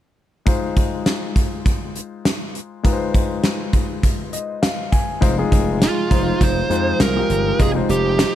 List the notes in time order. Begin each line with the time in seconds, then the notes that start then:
0.46 G#3 D#4 F4 C5, kick, closed hi-hat
0.76 kick, closed hi-hat
1.06 snare, closed hi-hat
1.36 kick, closed hi-hat
1.66 kick, closed hi-hat
1.96 closed hi-hat
2.25 snare, closed hi-hat
2.55 closed hi-hat
2.83 G#3 D#4 F4 B4, kick, closed hi-hat
2.92 C5
3.14 kick, closed hi-hat
3.44 snare, closed hi-hat
3.73 kick, closed hi-hat
4.03 kick, closed hi-hat
4.33 D#5, closed hi-hat
4.62 F5, snare, closed hi-hat
4.92 G#5, kick, closed hi-hat
5.21 F1 C3 F3 G#3 D#4 F4 C5, kick, closed hi-hat
5.38 G#3 D#4 F4 G#4
5.52 F1, kick, closed hi-hat
5.82 F4, snare, closed hi-hat
6.10 F1 G#3 D#4 F4 C5, kick, closed hi-hat
6.41 F1 C5, kick, closed hi-hat
6.70 F2 G#3 D#4 F4 C5, closed hi-hat
7.00 C2 A#4, snare, closed hi-hat
7.16 G#3 D#4 F4 G4
7.29 G1, closed hi-hat
7.59 F1 G#3 D#4 F4 G#4 D#5, kick, closed hi-hat
7.75 G#3 D#4 F4 C5
7.89 F1 G4, closed hi-hat
8.19 snare, closed hi-hat